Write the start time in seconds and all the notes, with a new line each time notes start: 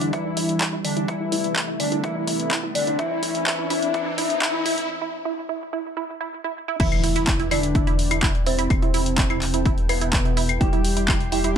Already playing: E2 D3 E3 G3 D4 D5, riser
0.01 E4, closed hi-hat
0.13 E3 E4 E5, kick, closed hi-hat
0.25 E4
0.37 E4, open hi-hat
0.49 closed hi-hat
0.61 E4, kick, clap, closed hi-hat
0.73 E4
0.85 D3 D4 D5, open hi-hat
0.97 E4, closed hi-hat
1.08 C3 E3 A3 E4 E5, kick, closed hi-hat
1.20 E4
1.32 E4, open hi-hat
1.44 closed hi-hat
1.56 E4, kick, clap, closed hi-hat
1.68 E4
1.80 D3 D4 D5, open hi-hat
1.92 E4, closed hi-hat
2.04 E3 E4 E5, kick, closed hi-hat
2.16 E4
2.27 E4, open hi-hat
2.40 closed hi-hat
2.51 E4, kick, clap, closed hi-hat
2.63 E4
2.75 D3 D4 D5, open hi-hat
2.87 E4, closed hi-hat
2.99 E3 C4 D4 E4 E5, kick, closed hi-hat
3.11 E4
3.23 E4, open hi-hat
3.35 closed hi-hat
3.46 E3 E4 E5, kick, clap, closed hi-hat
3.59 E4
3.70 E4, open hi-hat
3.82 closed hi-hat
3.94 E3 E4 E5, kick, closed hi-hat
4.06 E4
4.18 E4, open hi-hat
4.30 closed hi-hat
4.42 E3 E4 E5, kick, clap, closed hi-hat
4.54 E4
4.66 E4, open hi-hat
4.78 closed hi-hat
5.02 E4
5.25 E4
5.49 E4
5.73 E4
5.97 E4
6.21 E4
6.44 E4
6.68 E4
6.80 E1 E3 E4 B4 D5 E5 G5, kick, closed hi-hat, crash, impact
6.92 closed hi-hat, claves
7.04 E4, open hi-hat
7.16 E4, closed hi-hat
7.27 kick, clap, closed hi-hat
7.39 E4, closed hi-hat
7.51 D3 D4 E4 D5, open hi-hat, claves
7.63 closed hi-hat
7.75 E4, kick, closed hi-hat
7.87 E4, closed hi-hat
7.99 open hi-hat
8.11 E4, closed hi-hat, claves
8.23 E4, kick, clap, closed hi-hat
8.35 closed hi-hat
8.46 C3 C4 E4 C5, open hi-hat
8.59 E4, closed hi-hat
8.70 E1 A4, kick, closed hi-hat, claves
8.82 E4, closed hi-hat
8.94 E4, open hi-hat
9.06 closed hi-hat
9.18 E4, kick, clap, closed hi-hat
9.30 E4, closed hi-hat, claves
9.42 clap, open hi-hat
9.54 E4, closed hi-hat
9.65 E4, kick, closed hi-hat
9.78 closed hi-hat
9.89 B2 B3 E4 B4, open hi-hat, claves
10.01 E4, closed hi-hat
10.13 kick, clap, closed hi-hat
10.25 E4, closed hi-hat
10.37 E4, open hi-hat
10.49 closed hi-hat, claves
10.61 E1 G3 E4 G4 D5 G5 C6, kick, closed hi-hat
10.73 E4, closed hi-hat
10.85 open hi-hat
10.97 E4, closed hi-hat
11.08 E4, kick, clap, closed hi-hat, claves
11.20 closed hi-hat
11.32 G3 E4 G4 G5, open hi-hat
11.44 E4, closed hi-hat